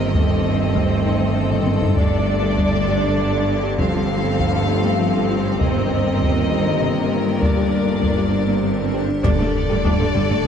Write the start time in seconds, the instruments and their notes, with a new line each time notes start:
Already playing: double bass section G1, cello section G2, trombone section D#3 G3, ambient pad D#3 C4 G4 A#4, french horn section A#3 C4, viola section C4, violin section A#4 D#5
0.14 trombone section A3, french horn section A3 C4, synth arpeggio sound A3, viola section C4, ambient pad A4, violin section A4, taiko
0.31 synth arpeggio sound A4
0.60 synth arpeggio sound D#4
0.75 synth arpeggio sound A3, taiko
0.91 synth arpeggio sound A4
1.06 synth arpeggio sound D#4
1.21 synth arpeggio sound C4
1.36 synth arpeggio sound A3
1.51 taiko low-mid
1.66 synth arpeggio sound A4, taiko high
1.82 synth arpeggio sound D#4, taiko low
1.97 double bass section G1, cello section G2, ambient pad D3 D4 G4, trombone section D3 G3, synth arpeggio sound G3, viola section D4, french horn section D4, violin section D5, taiko
2.12 synth arpeggio sound A4
2.43 synth arpeggio sound G4
2.58 synth arpeggio sound G3, taiko
2.74 synth arpeggio sound A4
2.88 synth arpeggio sound G4
3.04 synth arpeggio sound D4
3.18 synth arpeggio sound G3
3.49 synth arpeggio sound A4
3.64 synth arpeggio sound G4
3.79 synth arpeggio sound F3, trombone section F3, ambient pad F3 C4, french horn section A3 C4, viola section C4, violin section A4 F5, taiko
3.94 synth arpeggio sound F4
4.24 synth arpeggio sound C4
4.39 synth arpeggio sound F3, taiko
4.55 synth arpeggio sound F4
4.70 synth arpeggio sound C4
4.84 synth arpeggio sound A3
5.00 synth arpeggio sound F3
5.30 synth arpeggio sound F4
5.46 synth arpeggio sound C4
5.60 double bass section G1, cello section G2, synth arpeggio sound C3, trombone section D#3 G3, ambient pad D#3 A#4, french horn section A#3, violin section A#4 D#5, taiko
5.76 synth arpeggio sound A#3
6.06 synth arpeggio sound G3
6.21 synth arpeggio sound C3, taiko
6.37 synth arpeggio sound A#3
6.51 synth arpeggio sound G3
6.67 synth arpeggio sound D#3
6.82 synth arpeggio sound C3
7.12 synth arpeggio sound A#3
7.27 synth arpeggio sound G3
7.42 trombone section D3, ambient pad D3 D4 G4, synth arpeggio sound G3, french horn section D4, viola section D4, violin section D5, taiko, swell
7.57 synth arpeggio sound G4
7.87 synth arpeggio sound D4
8.02 synth arpeggio sound G3, taiko
8.17 synth arpeggio sound G4
8.32 synth arpeggio sound D4
8.47 synth arpeggio sound A#3
8.63 synth arpeggio sound G3
8.94 synth arpeggio sound G4
9.09 synth arpeggio sound D4
9.24 double bass section G1, cello section G2, ambient pad D3 D4 G4 A4, synth arpeggio sound G3, viola section D4, violin section A4 D5, taiko, impact
9.39 cello section G2, viola section A3, synth arpeggio sound A4, taiko low
9.70 cello section G2, viola section A3, synth arpeggio sound G4
9.84 double bass section G1, cello section G2, trombone section D3 G3, synth arpeggio sound G3, french horn section A3 D4, viola section D4, taiko
10.00 cello section G2, viola section A3, synth arpeggio sound A4
10.15 double bass section G1, cello section G2, viola section G3, synth arpeggio sound G4, taiko low
10.30 cello section G2, viola section A3, synth arpeggio sound D4, taiko low